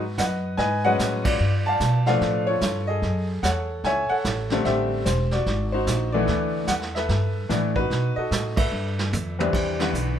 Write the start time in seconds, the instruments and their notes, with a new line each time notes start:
Already playing: upright bass G#2, upright piano F#4 B4
0.18 upright bass F#2, upright piano B4 D#5 F#5, kick, snare, hi-hat pedal
0.57 upright bass G#2, upright piano B4 D#5 G#5, brush sweep, kick, snare
0.85 upright piano F#3 G#3 B3 C#4 B4 D#5 F#5
0.99 upright bass A2, kick, snare, hi-hat pedal
1.24 upright piano F4 B4 D5, kick, crash
1.39 upright bass G2, brush sweep
1.66 upright piano D5 F5 A5
1.80 upright bass B2, kick, snare, hi-hat pedal
2.06 upright piano F3 A3 B3 D4 A4 B4 F5, snare
2.21 upright bass A2, brush sweep, kick, snare
2.47 upright piano F4 A4 C#5
2.61 upright bass G2, kick, snare, hi-hat pedal
2.87 upright piano G#4 A4 D#5
3.02 upright bass F#2, brush sweep, kick, snare
3.43 upright bass E2, upright piano A4 C#5 F#5, kick, snare, hi-hat pedal
3.84 upright bass C#2, upright piano C#5 E5 G#5, brush sweep, kick, snare
4.09 upright piano A4 C#5 F#5, muted upright bass stroke
4.24 upright bass A1, kick, snare, hi-hat pedal
4.50 upright piano D3 G3 A3 C4, snare
4.65 upright bass A1, upright piano G4 C5 E5, brush sweep, kick, snare
5.06 upright bass E1, upright piano C5, kick, snare, hi-hat pedal
5.31 upright piano F#4 D5, snare
5.46 upright bass G#1, brush sweep, kick, snare
5.72 upright piano D#4 F#4 C5
5.87 upright bass A#1, kick, snare, hi-hat pedal
6.12 upright piano E3 A3 B3 D4 A4 B4 D5
6.27 upright bass D2, brush sweep, kick, snare
6.67 upright bass E2, upright piano F#5, kick, snare, hi-hat pedal
6.81 snare
6.95 upright piano A4 B4 E5, snare
7.09 upright bass G2, brush sweep, kick, snare
7.49 upright bass A2, upright piano E3 A3 B3 D4 D5, kick, snare, hi-hat pedal
7.76 upright piano D#4 F#4 B4, kick
7.90 upright bass B2, brush sweep, kick, snare
8.16 upright piano F#4 A4 D#5, muted upright bass stroke
8.31 upright bass A2, kick, snare, hi-hat pedal
8.56 upright piano A4 B4 E5, kick, crash
8.71 upright bass G2
8.99 snare
9.12 upright bass F2, hi-hat pedal, high tom
9.39 upright piano C2 E3 G3 C4 D4 B4, high tom
9.53 upright bass E2, brush sweep, kick, snare, crash
9.79 upright piano D3 E3 B3, snare, ride
9.93 upright bass B1, hi-hat pedal